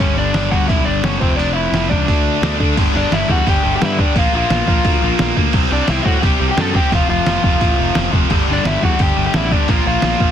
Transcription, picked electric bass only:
0.00 0.14 G1 medium
0.16 0.30 G1 medium
0.34 0.48 G1 medium
0.52 0.66 G1 medium
0.70 0.83 B1 medium
0.87 1.01 G1 medium
1.04 1.18 F#1 medium
1.21 1.35 F1 medium
1.38 1.66 F1 medium
1.72 1.87 F1 medium
1.90 2.05 C#2 medium
2.08 2.36 D2 medium
2.42 2.56 D2 medium
2.60 2.74 D3 medium
2.77 2.88 G1 loud
2.95 3.06 G1 loud
3.12 3.23 G1 medium
3.29 3.40 E2 medium
3.47 3.57 G1 medium
3.65 3.75 G1 medium
3.82 4.03 G2 loud
4.16 4.26 A#1 loud
4.33 4.44 A#1 medium
4.50 4.61 A#1 loud
4.67 4.78 A#1 medium
4.85 4.95 D2 medium
5.03 5.13 A#1 medium
5.20 5.31 A#1 loud
5.36 5.47 D2 medium
5.54 5.65 C2 loud
5.71 5.82 C2 medium
5.89 5.99 C2 loud
6.05 6.16 A2 medium
6.23 6.34 C2 medium
6.40 6.51 C2 medium
6.57 6.79 F#2 medium
6.92 7.03 F1 medium
7.09 7.20 F1 medium
7.27 7.38 F1 medium
7.44 7.55 F1 medium
7.61 7.72 A1 medium
7.79 7.90 F1 medium
7.97 8.07 F1 loud
8.13 8.24 F1 loud
8.31 8.41 G1 loud
8.48 8.59 G1 medium
8.65 8.76 G1 medium
8.82 8.93 E2 medium
8.99 9.10 G1 medium
9.17 9.28 G1 medium
9.34 9.56 A1 medium
9.69 9.79 A#1 loud
9.86 9.96 A#1 loud
10.03 10.14 A#1 medium
10.20 10.31 A#1 medium

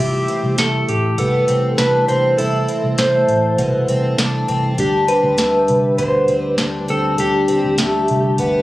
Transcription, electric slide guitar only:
0.00 0.58 G4 medium
0.59 0.90 A4 medium
0.89 1.20 G4 medium
1.19 1.75 A4 medium
1.78 2.08 B4 medium
2.08 2.36 C5 medium
2.38 3.00 A4 medium
2.99 4.15 C5 medium
4.80 5.10 G4 medium
5.08 5.98 B4 medium
5.98 6.38 C5 medium
6.38 6.54 B4 medium
6.90 7.17 A4 medium
7.20 8.35 G4 medium

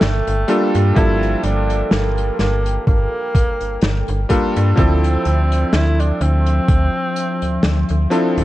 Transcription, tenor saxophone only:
0.01 0.75 A3 loud
0.96 1.45 E4 loud
1.44 1.93 D4 loud
1.92 2.39 A#3 medium
2.39 2.84 A#3 medium
2.87 4.26 A#3 loud
4.78 5.76 C4 loud
5.74 6.02 E4 loud
6.00 6.23 D4 medium
6.22 8.11 C4 loud

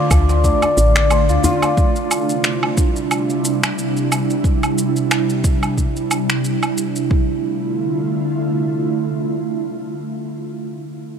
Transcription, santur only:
0.00 2.73 A3 medium
0.00 2.95 C4 medium
0.00 0.44 D4 medium
0.00 1.29 F4 medium
0.00 1.11 C5 medium
0.00 0.95 D5 medium
0.44 4.17 D4 medium
0.96 3.42 D5 medium
1.11 3.75 C5 medium
1.29 1.44 F4 medium
1.44 4.80 F4 medium

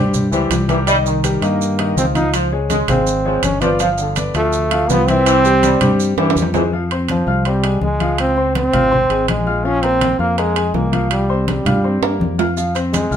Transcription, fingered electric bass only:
0.00 0.29 G2 loud
0.31 0.49 C#2 medium
0.50 1.36 C2 medium
1.41 1.93 G2 loud
1.96 2.82 C#2 medium
2.88 3.39 G#1 loud
3.42 4.29 G1 medium
4.34 4.86 D2 loud
4.89 5.75 C2 medium
5.81 6.15 G2 loud
6.17 6.34 G2 medium
6.36 7.22 F2 medium
7.27 7.78 C2 loud
7.81 8.67 C#2 medium
8.73 9.07 G#1 loud
9.09 9.27 G#1 medium
9.28 10.14 A#1 medium
10.19 10.70 F2 loud
10.74 11.60 C2 medium
11.65 11.99 G2 loud
12.02 12.19 G2 medium
12.20 13.06 F2 medium
13.11 13.17 C2 loud

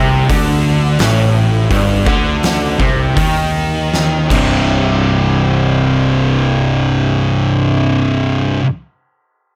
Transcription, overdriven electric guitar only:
0.00 0.29 C3 loud
0.29 0.98 D3 loud
0.99 1.69 A2 loud
1.70 2.05 G2 loud
2.07 2.78 D3 loud
2.80 3.15 C3 loud
3.16 4.30 D#3 loud
4.28 8.60 C2 loud
4.28 8.62 G2 loud
4.32 8.64 C3 loud

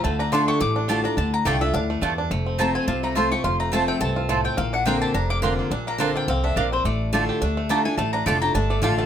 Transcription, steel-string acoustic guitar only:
0.05 0.31 D3 medium
0.32 0.59 D3 loud
0.32 0.60 A3 loud
0.32 0.60 D4 medium
0.32 0.61 F4 loud
0.61 1.15 A2 loud
0.89 1.04 D3 loud
0.89 1.04 A3 loud
0.89 1.05 D4 loud
0.89 1.03 F4 loud
1.05 1.18 D4 medium
1.05 1.17 F4 medium
1.18 1.44 D3 medium
1.45 1.61 D3 loud
1.45 1.61 A3 loud
1.45 1.61 D4 loud
1.45 1.60 F4 loud
1.61 1.75 D4 soft
1.61 1.74 F4 medium
1.74 2.01 A2 loud
2.03 2.30 G2 medium
2.31 2.85 F2 medium
2.59 2.86 F3 loud
2.59 2.87 A3 loud
2.59 2.87 C4 loud
2.59 2.87 F4 loud
2.88 3.42 C3 loud
3.15 3.31 F3 medium
3.15 3.31 A3 medium
3.15 3.32 C4 medium
3.15 3.30 F4 loud
3.31 3.45 C4 soft
3.31 3.44 F4 medium
3.44 3.99 F2 medium
3.72 3.99 F3 medium
3.72 4.00 A3 loud
3.72 4.00 C4 loud
3.72 4.01 F4 loud
4.01 4.28 G2 loud
4.29 4.56 A2 loud
4.58 5.12 A#2 medium
4.86 5.13 D3 loud
4.86 5.14 A#3 loud
4.86 5.14 C4 loud
4.86 5.14 F4 loud
5.14 5.69 F2 loud
5.42 5.70 D3 loud
5.42 5.70 A#3 loud
5.42 5.70 C4 medium
5.42 5.71 F4 medium
5.71 6.26 A#2 medium
5.98 6.26 D3 medium
5.98 6.27 A#3 loud
5.98 6.27 C4 loud
5.98 6.27 F4 loud
6.28 6.55 F2 medium
6.57 6.84 A#2 loud
6.85 7.39 A2 medium
7.13 7.40 D3 loud
7.13 7.40 A3 loud
7.13 7.41 D4 loud
7.13 7.41 F4 loud
7.42 7.69 A3 loud
7.69 7.84 D3 loud
7.69 7.85 A3 loud
7.69 7.85 D4 loud
7.69 7.84 F4 medium
7.85 7.99 D4 medium
7.85 7.98 F4 medium
7.99 8.52 A2 medium
8.26 8.41 D3 loud
8.26 8.42 A3 loud
8.26 8.42 D4 loud
8.26 8.40 F4 loud
8.41 8.55 D4 medium
8.41 8.54 F4 medium
8.55 8.81 A3 loud
8.82 9.06 D3 loud
8.82 9.06 A3 loud
8.82 9.06 D4 medium
8.82 9.06 F4 loud

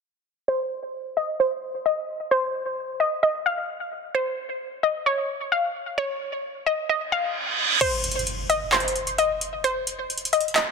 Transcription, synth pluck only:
0.48 1.13 C5 loud
1.17 1.36 D#5 medium
1.40 1.83 C5 medium
1.86 2.29 D#5 medium
2.31 2.96 C5 loud
3.00 3.19 D#5 medium
3.23 3.42 D#5 medium
3.46 4.11 F5 medium
4.15 4.79 C5 loud
4.83 5.03 D#5 medium
5.06 5.49 C#5 medium
5.52 5.95 F5 medium
5.98 6.62 C#5 loud
6.66 6.86 D#5 medium
6.89 7.09 D#5 medium
7.12 7.77 F5 medium
7.81 8.46 C5 loud
8.50 8.69 D#5 medium
8.73 9.16 C5 medium
9.18 9.61 D#5 medium
9.64 10.29 C5 loud
10.33 10.52 D#5 medium
10.56 10.71 D#5 medium

